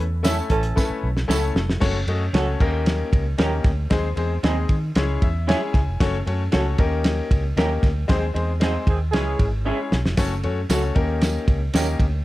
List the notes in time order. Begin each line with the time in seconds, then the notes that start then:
0.00 E2
0.23 A3 C#4 E4 A4 E5, snare, closed hi-hat, tambourine
0.50 A1 E3 A3 C#4 A4, kick, closed hi-hat
0.63 closed hi-hat
0.76 A3 C#4 E4 A4 B4, kick, snare, tambourine
0.90 muted fingered electric bass stroke
1.04 B1
1.17 snare
1.28 C#2 A3 C#4 E4 A4 C#5, snare, tambourine
1.54 F1, snare
1.70 snare
1.80 F#1 A3 C#4 F#4 A4 C#5, kick, snare, crash
2.07 F#2 A3 C#4 F#4 A4 D#5, ride
2.33 C#2 A3 C#4 F#4 A4 C#5, snare, ride
2.60 D#2 A#3 C#4 D#4 G4 A#4, kick, crash
2.86 snare, ride
3.13 C#2, kick, ride
3.38 D#2 A#3 C#4 D#4 G4 A#4, snare, ride
3.64 D2, kick, snare, ride
3.90 D#2 G#3 C4 D#4 G#4 C5, kick, snare, ride
4.16 E2 G#3 C4 D#4 G#4 C5, ride
4.43 D#2 G#3 C4 D#4 G#4 D#5, snare, ride
4.69 D#3, kick, ride
4.95 C#2 G#3 C#4 E4 G#4 C#5, snare, ride
5.22 E2 E5, kick, ride
5.47 G#3 C#4 E4 G#4 C#5 G#5, snare, ride
5.73 C#2 G#5, kick, snare, ride
5.88 F1
6.00 F#1 A3 C#4 F#4 A4 C#5, kick, snare, ride
6.26 F#2 A3 C#4 F#4 A4 C#5, ride
6.52 C#2 A3 C#4 F#4 A4 C#5, snare, ride
6.78 D#2 A#3 C#4 D#4 G4 A#4, kick, ride
7.04 snare, ride
7.31 C#2, kick, ride
7.56 D#2 A#3 C#4 D#4 G4 A#4, snare, ride
7.83 D2, kick, snare, ride
8.08 D#2 D#3 G#3 C4 D#4 G#4 C5, kick, snare, ride
8.34 E2 G#3 C4 D#4 G#4 C5, ride
8.60 G#3 C4 D#4 G#4 C5, snare, ride
8.87 D#2 D#3 G#3 C4 G#4, kick, ride
9.11 C#2 E3 G#3 C#4 E4 G#4 C#5, snare, ride
9.39 G#1, kick, ride
9.65 G#3 C#4 E4 G#4 C#5
9.92 B1, snare
10.05 F1, snare
10.17 F#1 A3 C#4 F#4 A4 C#5, kick, snare, ride, tambourine
10.43 F#2 A3 C#4 F#4 A4 C#5, ride
10.69 C#2 A3 C#4 F#4 A4 C#5, snare, ride, tambourine
10.95 D#2 A#3 C#4 D#4 G4 A#4, kick, ride
11.21 snare, ride, tambourine
11.48 C#2, kick, ride
11.74 D#2 A#3 C#4 D#4 G4 A#4, snare, ride, tambourine
12.00 D2, kick, ride